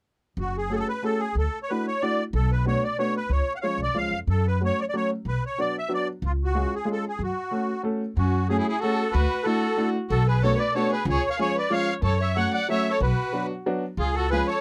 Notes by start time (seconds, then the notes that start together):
0.37 F#1 F#4
0.57 G#4
0.70 A3 C#4 F#4 G#4 A4
0.75 G#4
0.79 A4
0.88 B4
1.03 A3 C#4 F#4 G#4 A4
1.19 G#4
1.35 D2 A4
1.63 C#5
1.69 A3 D4 E4 F#4 B4
1.88 C#5
2.02 A3 D4 E4 F#4 D5
2.33 B1 A4
2.52 B4
2.65 A3 B3 D4 F#4 C#5
2.84 D5
2.99 A3 B3 D4 F#4 C#5
3.17 B4
3.29 C#2 C#5
3.55 F5 F#5
3.62 F3 G#3 C#4 F4 C#5 F5
3.78 B1
3.83 D5
3.94 C#2 F3 G#3 C#4 F4 F5
4.11 F2
4.27 F#2 A4
4.47 B4
4.61 F#3 A3 C#4 F#4
4.65 C#5
4.80 C#5 D5
4.89 D5
4.94 F#3 A3 C#4 F#4 C#5
5.25 B1 B4
5.46 C#5
5.58 F#3 B3 D4 F#4 D5
5.78 E5
5.88 F#3 B3 D4 F#4
5.94 D5
6.22 C#2 F4
6.44 F#4
6.55 G#3 C#4 F4 G#4
6.75 G#4
6.85 G#3 C#4 F4 G#4
6.92 A4
7.08 G#4
7.19 F#2
7.23 F#4
7.51 A3 C#4 F#4 A4
7.83 A3 C#4 F#4 A4
8.17 F#2 C#4 F#4
8.49 A3 C#4 F#4 G#4
8.59 E4 G#4
8.68 E4 G#4
8.80 A3 C#4 F#4 G#4 A4
9.12 D2 F#4 B4
9.44 A3 D4 E4 F#4 A4
9.77 A3 D4 E4 F#4
10.09 B1 F#4 A4
10.28 G#4 B4
10.42 A3 B3 D4 F#4 A4 C#5
10.57 B4 D5
10.74 A3 B3 D4 F#4 A4 C#5
10.91 G#4 B4
11.05 C#2 G#4
11.10 C#5
11.30 C#5 F5
11.39 F3 G#3 C#4 F4 G#4 C#5
11.57 B4 D5
11.70 F3 G#3 C#4 F4 C#5 F5
12.02 F#2 A4 C#5
12.21 C#5 E5
12.36 F#3 A3 C#4 F#4 C#5 F#5
12.54 D5 F#5
12.68 F#3 A3 C#4 F#4 C#5 E5
12.90 A4 C#5
13.00 B1 F#4 B4
13.33 F#3 B3 D4 F#4
13.66 F#3 B3 D4 F#4
13.97 C#2 F4 G#4
14.14 F#4 A4
14.31 F3 G#3 C#4 F4 G#4 B4
14.47 A4 C#5